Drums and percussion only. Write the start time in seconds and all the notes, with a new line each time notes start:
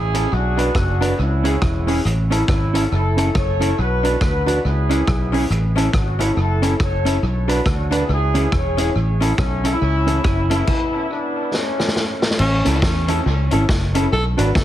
0.14 closed hi-hat
0.59 closed hi-hat
0.75 kick, cross-stick
1.02 closed hi-hat
1.45 closed hi-hat
1.62 kick, cross-stick
1.88 open hi-hat
2.06 hi-hat pedal
2.32 closed hi-hat
2.48 kick, cross-stick
2.75 closed hi-hat
3.18 closed hi-hat
3.35 kick, cross-stick
3.62 closed hi-hat
4.05 closed hi-hat
4.21 kick, cross-stick
4.48 closed hi-hat
4.90 closed hi-hat
5.07 kick, cross-stick
5.34 open hi-hat
5.51 hi-hat pedal
5.78 closed hi-hat
5.93 kick, cross-stick
6.20 closed hi-hat
6.63 closed hi-hat
6.80 kick, cross-stick
7.06 closed hi-hat
7.49 closed hi-hat
7.66 kick, cross-stick
7.92 closed hi-hat
8.35 closed hi-hat
8.52 kick, cross-stick
8.78 closed hi-hat
9.22 closed hi-hat
9.38 kick, cross-stick
9.65 closed hi-hat
10.07 closed hi-hat
10.24 kick, cross-stick
10.51 closed hi-hat
10.67 kick, crash
11.54 snare
11.79 snare
11.88 snare
11.96 snare
12.22 snare
12.31 snare
12.39 crash
12.65 closed hi-hat
12.82 kick, snare
13.08 closed hi-hat
13.51 closed hi-hat
13.69 kick, snare
13.95 closed hi-hat
14.39 closed hi-hat
14.55 kick, snare